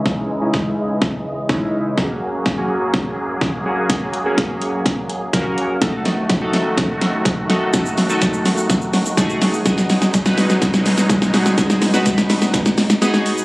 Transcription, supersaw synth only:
0, 0, Header, 1, 2, 480
1, 0, Start_track
1, 0, Tempo, 480000
1, 57, Time_signature, 4, 2, 24, 8
1, 13448, End_track
2, 0, Start_track
2, 0, Title_t, "Supersaw synth"
2, 0, Program_c, 0, 81
2, 0, Note_on_c, 0, 49, 76
2, 0, Note_on_c, 0, 52, 85
2, 0, Note_on_c, 0, 56, 70
2, 0, Note_on_c, 0, 75, 69
2, 1938, Note_off_c, 0, 49, 0
2, 1938, Note_off_c, 0, 75, 0
2, 1939, Note_off_c, 0, 52, 0
2, 1939, Note_off_c, 0, 56, 0
2, 1971, Note_on_c, 0, 58, 72
2, 1971, Note_on_c, 0, 68, 87
2, 1972, Note_on_c, 0, 42, 81
2, 1973, Note_on_c, 0, 54, 69
2, 5776, Note_off_c, 0, 42, 0
2, 5776, Note_off_c, 0, 58, 0
2, 5776, Note_off_c, 0, 68, 0
2, 5777, Note_off_c, 0, 54, 0
2, 5817, Note_on_c, 0, 39, 80
2, 5817, Note_on_c, 0, 51, 70
2, 5817, Note_on_c, 0, 57, 71
2, 5817, Note_on_c, 0, 66, 92
2, 9618, Note_off_c, 0, 39, 0
2, 9619, Note_off_c, 0, 51, 0
2, 9619, Note_off_c, 0, 57, 0
2, 9619, Note_off_c, 0, 66, 0
2, 9654, Note_on_c, 0, 47, 83
2, 9654, Note_on_c, 0, 63, 92
2, 9655, Note_on_c, 0, 54, 76
2, 9655, Note_on_c, 0, 56, 76
2, 13448, Note_off_c, 0, 47, 0
2, 13448, Note_off_c, 0, 54, 0
2, 13448, Note_off_c, 0, 56, 0
2, 13448, Note_off_c, 0, 63, 0
2, 13448, End_track
0, 0, End_of_file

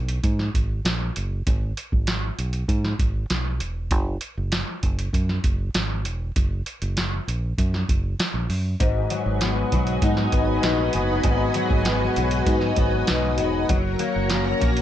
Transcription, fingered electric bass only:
0, 0, Header, 1, 2, 480
1, 0, Start_track
1, 0, Key_signature, 5, "minor"
1, 0, Tempo, 611621
1, 1151, Time_signature, 4, 2, 24, 8
1, 11629, End_track
2, 0, Start_track
2, 0, Title_t, "Fingered electric bass"
2, 0, Program_c, 0, 33
2, 0, Note_on_c, 0, 35, 90
2, 142, Note_off_c, 0, 35, 0
2, 185, Note_on_c, 0, 44, 103
2, 379, Note_off_c, 0, 44, 0
2, 429, Note_on_c, 0, 32, 81
2, 622, Note_off_c, 0, 32, 0
2, 665, Note_on_c, 0, 34, 90
2, 859, Note_off_c, 0, 34, 0
2, 915, Note_on_c, 0, 30, 89
2, 1105, Note_off_c, 0, 30, 0
2, 1154, Note_on_c, 0, 32, 107
2, 1344, Note_off_c, 0, 32, 0
2, 1512, Note_on_c, 0, 32, 84
2, 1799, Note_off_c, 0, 32, 0
2, 1871, Note_on_c, 0, 35, 86
2, 2063, Note_off_c, 0, 35, 0
2, 2107, Note_on_c, 0, 44, 100
2, 2300, Note_off_c, 0, 44, 0
2, 2347, Note_on_c, 0, 32, 80
2, 2540, Note_off_c, 0, 32, 0
2, 2592, Note_on_c, 0, 35, 89
2, 2833, Note_off_c, 0, 35, 0
2, 2833, Note_on_c, 0, 28, 89
2, 3071, Note_off_c, 0, 28, 0
2, 3071, Note_on_c, 0, 30, 86
2, 3262, Note_off_c, 0, 30, 0
2, 3433, Note_on_c, 0, 30, 82
2, 3624, Note_off_c, 0, 30, 0
2, 3790, Note_on_c, 0, 30, 90
2, 3982, Note_off_c, 0, 30, 0
2, 4028, Note_on_c, 0, 42, 97
2, 4221, Note_off_c, 0, 42, 0
2, 4267, Note_on_c, 0, 30, 97
2, 4460, Note_off_c, 0, 30, 0
2, 4509, Note_on_c, 0, 32, 82
2, 4749, Note_off_c, 0, 32, 0
2, 4749, Note_on_c, 0, 28, 84
2, 4941, Note_off_c, 0, 28, 0
2, 4994, Note_on_c, 0, 30, 90
2, 5184, Note_off_c, 0, 30, 0
2, 5351, Note_on_c, 0, 30, 85
2, 5639, Note_off_c, 0, 30, 0
2, 5710, Note_on_c, 0, 34, 87
2, 5902, Note_off_c, 0, 34, 0
2, 5952, Note_on_c, 0, 42, 98
2, 6143, Note_off_c, 0, 42, 0
2, 6192, Note_on_c, 0, 30, 81
2, 6383, Note_off_c, 0, 30, 0
2, 6544, Note_on_c, 0, 34, 87
2, 6642, Note_off_c, 0, 34, 0
2, 6666, Note_on_c, 0, 42, 82
2, 6860, Note_off_c, 0, 42, 0
2, 6908, Note_on_c, 0, 32, 102
2, 7101, Note_off_c, 0, 32, 0
2, 7267, Note_on_c, 0, 32, 87
2, 7556, Note_off_c, 0, 32, 0
2, 7634, Note_on_c, 0, 35, 87
2, 7824, Note_off_c, 0, 35, 0
2, 7863, Note_on_c, 0, 44, 109
2, 8058, Note_off_c, 0, 44, 0
2, 8103, Note_on_c, 0, 32, 81
2, 8298, Note_off_c, 0, 32, 0
2, 8346, Note_on_c, 0, 34, 89
2, 8540, Note_off_c, 0, 34, 0
2, 8592, Note_on_c, 0, 30, 88
2, 8783, Note_off_c, 0, 30, 0
2, 8823, Note_on_c, 0, 32, 103
2, 9018, Note_off_c, 0, 32, 0
2, 9184, Note_on_c, 0, 32, 83
2, 9474, Note_off_c, 0, 32, 0
2, 9548, Note_on_c, 0, 35, 87
2, 9741, Note_off_c, 0, 35, 0
2, 9781, Note_on_c, 0, 44, 105
2, 9977, Note_off_c, 0, 44, 0
2, 10023, Note_on_c, 0, 32, 80
2, 10218, Note_off_c, 0, 32, 0
2, 10278, Note_on_c, 0, 35, 89
2, 10512, Note_off_c, 0, 35, 0
2, 10512, Note_on_c, 0, 28, 88
2, 10703, Note_off_c, 0, 28, 0
2, 10749, Note_on_c, 0, 30, 106
2, 10942, Note_off_c, 0, 30, 0
2, 11112, Note_on_c, 0, 30, 90
2, 11399, Note_off_c, 0, 30, 0
2, 11475, Note_on_c, 0, 34, 83
2, 11629, Note_off_c, 0, 34, 0
2, 11629, End_track
0, 0, End_of_file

